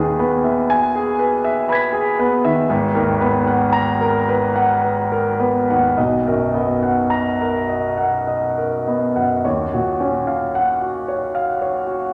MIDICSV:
0, 0, Header, 1, 2, 480
1, 0, Start_track
1, 0, Tempo, 1001669
1, 1291, Time_signature, 3, 2, 24, 8
1, 1291, Tempo, 1043478
1, 1771, Tempo, 1123596
1, 3211, Tempo, 1162791
1, 4171, Tempo, 1077199
1, 5372, End_track
2, 0, Start_track
2, 0, Title_t, "Grand piano"
2, 0, Program_c, 0, 0
2, 0, Control_c, 0, 64, 127
2, 0, Note_on_c, 0, 39, 60
2, 0, Note_on_c, 0, 51, 49
2, 0, Note_on_c, 0, 68, 56
2, 0, Note_on_c, 0, 71, 51
2, 92, Note_on_c, 0, 59, 54
2, 93, Note_off_c, 0, 71, 0
2, 93, Note_on_c, 0, 71, 58
2, 168, Note_off_c, 0, 68, 0
2, 169, Note_off_c, 0, 51, 0
2, 212, Note_on_c, 0, 76, 58
2, 289, Note_off_c, 0, 59, 0
2, 289, Note_off_c, 0, 71, 0
2, 335, Note_on_c, 0, 80, 82
2, 408, Note_off_c, 0, 76, 0
2, 457, Note_on_c, 0, 68, 57
2, 528, Note_off_c, 0, 80, 0
2, 571, Note_on_c, 0, 71, 60
2, 647, Note_off_c, 0, 68, 0
2, 692, Note_on_c, 0, 76, 63
2, 763, Note_off_c, 0, 71, 0
2, 810, Note_on_c, 0, 83, 49
2, 812, Note_on_c, 0, 71, 56
2, 826, Note_on_c, 0, 92, 49
2, 838, Note_on_c, 0, 95, 48
2, 883, Note_off_c, 0, 76, 0
2, 923, Note_on_c, 0, 68, 55
2, 1003, Note_off_c, 0, 71, 0
2, 1050, Note_on_c, 0, 71, 62
2, 1051, Note_on_c, 0, 59, 60
2, 1118, Note_off_c, 0, 68, 0
2, 1172, Note_on_c, 0, 76, 65
2, 1174, Note_on_c, 0, 51, 61
2, 1243, Note_off_c, 0, 59, 0
2, 1243, Note_off_c, 0, 71, 0
2, 1270, Note_off_c, 0, 83, 0
2, 1272, Note_off_c, 0, 39, 0
2, 1278, Note_off_c, 0, 92, 0
2, 1284, Note_off_c, 0, 95, 0
2, 1292, Note_off_c, 0, 51, 0
2, 1292, Note_off_c, 0, 76, 0
2, 1292, Note_on_c, 0, 71, 62
2, 1294, Note_on_c, 0, 32, 73
2, 1297, Control_c, 0, 64, 0
2, 1365, Control_c, 0, 64, 127
2, 1408, Note_on_c, 0, 70, 61
2, 1409, Note_on_c, 0, 39, 57
2, 1480, Note_off_c, 0, 71, 0
2, 1525, Note_on_c, 0, 59, 63
2, 1529, Note_on_c, 0, 71, 62
2, 1599, Note_off_c, 0, 70, 0
2, 1600, Note_off_c, 0, 39, 0
2, 1650, Note_on_c, 0, 78, 61
2, 1720, Note_off_c, 0, 59, 0
2, 1722, Note_off_c, 0, 71, 0
2, 1765, Note_on_c, 0, 82, 86
2, 1841, Note_off_c, 0, 78, 0
2, 1886, Note_on_c, 0, 70, 60
2, 1954, Note_off_c, 0, 82, 0
2, 2006, Note_on_c, 0, 71, 65
2, 2075, Note_off_c, 0, 70, 0
2, 2121, Note_on_c, 0, 78, 62
2, 2195, Note_off_c, 0, 71, 0
2, 2233, Note_on_c, 0, 71, 54
2, 2312, Note_off_c, 0, 78, 0
2, 2361, Note_on_c, 0, 70, 55
2, 2429, Note_off_c, 0, 71, 0
2, 2480, Note_on_c, 0, 59, 48
2, 2480, Note_on_c, 0, 71, 57
2, 2555, Note_off_c, 0, 70, 0
2, 2608, Note_on_c, 0, 39, 48
2, 2612, Note_on_c, 0, 78, 57
2, 2676, Note_off_c, 0, 59, 0
2, 2676, Note_off_c, 0, 71, 0
2, 2710, Note_off_c, 0, 32, 0
2, 2725, Note_on_c, 0, 75, 55
2, 2727, Note_on_c, 0, 35, 58
2, 2728, Note_off_c, 0, 39, 0
2, 2730, Note_off_c, 0, 78, 0
2, 2734, Control_c, 0, 64, 0
2, 2805, Control_c, 0, 64, 127
2, 2855, Note_on_c, 0, 42, 46
2, 2855, Note_on_c, 0, 70, 46
2, 2920, Note_off_c, 0, 75, 0
2, 2969, Note_on_c, 0, 59, 47
2, 2969, Note_on_c, 0, 75, 51
2, 3044, Note_off_c, 0, 42, 0
2, 3045, Note_off_c, 0, 70, 0
2, 3091, Note_on_c, 0, 78, 47
2, 3162, Note_off_c, 0, 59, 0
2, 3162, Note_off_c, 0, 75, 0
2, 3208, Note_on_c, 0, 82, 64
2, 3282, Note_off_c, 0, 78, 0
2, 3336, Note_on_c, 0, 70, 44
2, 3398, Note_off_c, 0, 82, 0
2, 3450, Note_on_c, 0, 75, 44
2, 3522, Note_off_c, 0, 70, 0
2, 3569, Note_on_c, 0, 78, 44
2, 3640, Note_off_c, 0, 75, 0
2, 3692, Note_on_c, 0, 75, 44
2, 3760, Note_off_c, 0, 78, 0
2, 3816, Note_on_c, 0, 70, 41
2, 3884, Note_off_c, 0, 75, 0
2, 3940, Note_on_c, 0, 75, 43
2, 3941, Note_on_c, 0, 59, 40
2, 4008, Note_off_c, 0, 70, 0
2, 4057, Note_on_c, 0, 78, 45
2, 4060, Note_on_c, 0, 42, 38
2, 4128, Note_off_c, 0, 75, 0
2, 4129, Note_off_c, 0, 59, 0
2, 4154, Note_off_c, 0, 35, 0
2, 4173, Note_off_c, 0, 78, 0
2, 4174, Note_off_c, 0, 42, 0
2, 4177, Control_c, 0, 64, 0
2, 4177, Note_on_c, 0, 39, 50
2, 4177, Note_on_c, 0, 73, 48
2, 4264, Control_c, 0, 64, 127
2, 4306, Note_on_c, 0, 46, 40
2, 4306, Note_on_c, 0, 66, 44
2, 4372, Note_off_c, 0, 73, 0
2, 4424, Note_on_c, 0, 61, 42
2, 4425, Note_on_c, 0, 73, 45
2, 4497, Note_off_c, 0, 46, 0
2, 4497, Note_off_c, 0, 66, 0
2, 4545, Note_on_c, 0, 77, 46
2, 4616, Note_off_c, 0, 61, 0
2, 4616, Note_off_c, 0, 73, 0
2, 4669, Note_on_c, 0, 78, 62
2, 4735, Note_off_c, 0, 77, 0
2, 4788, Note_on_c, 0, 66, 42
2, 4856, Note_off_c, 0, 78, 0
2, 4906, Note_on_c, 0, 73, 45
2, 4974, Note_off_c, 0, 66, 0
2, 5024, Note_on_c, 0, 77, 48
2, 5092, Note_off_c, 0, 73, 0
2, 5143, Note_on_c, 0, 73, 42
2, 5209, Note_off_c, 0, 77, 0
2, 5256, Note_on_c, 0, 66, 45
2, 5328, Note_off_c, 0, 73, 0
2, 5372, Note_off_c, 0, 39, 0
2, 5372, Note_off_c, 0, 66, 0
2, 5372, End_track
0, 0, End_of_file